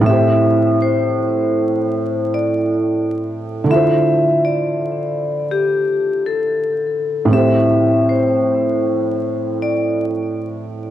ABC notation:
X:1
M:4/4
L:1/16
Q:"Swing 16ths" 1/4=66
K:Am
V:1 name="Vibraphone"
e3 c6- c d2 z4 | e3 d4- d G3 A4- A | e3 c6- c d2 z4 |]
V:2 name="Felt piano"
[A,,A,CGc]16 | [D,A,EFc]16 | [A,,A,CGc]16 |]